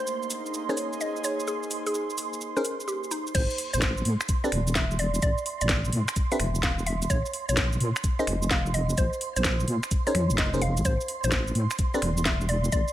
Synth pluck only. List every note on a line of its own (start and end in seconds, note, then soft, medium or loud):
0.00 0.15 C5 medium
0.69 0.86 C#5 medium
1.01 1.17 D#5 medium
1.24 1.40 C#5 medium
1.48 1.67 G#4 loud
1.87 2.03 G#4 medium
2.57 2.73 A#4 medium
2.88 3.04 G4 medium
3.11 3.27 D#4 medium
3.35 3.55 C5 loud
3.73 3.90 C5 loud
4.44 4.61 D5 medium
4.75 4.91 E5 medium
4.99 5.15 D5 medium
5.22 5.42 D5 loud
5.61 5.78 D5 medium
6.32 6.48 E5 medium
6.63 6.79 F5 medium
6.86 7.02 E5 medium
7.10 7.30 C#5 loud
7.49 7.65 C#5 loud
8.19 8.36 D#5 medium
8.51 8.67 F5 medium
8.74 8.90 D#5 medium
8.98 9.17 C5 loud
9.36 9.53 C5 loud
10.07 10.23 C#5 medium
10.38 10.54 D#5 medium
10.62 10.77 F5 medium
10.85 11.05 C5 loud
11.24 11.41 C5 loud
11.94 12.11 D5 medium
12.25 12.41 E5 medium
12.49 12.65 D5 medium
12.72 12.92 D5 loud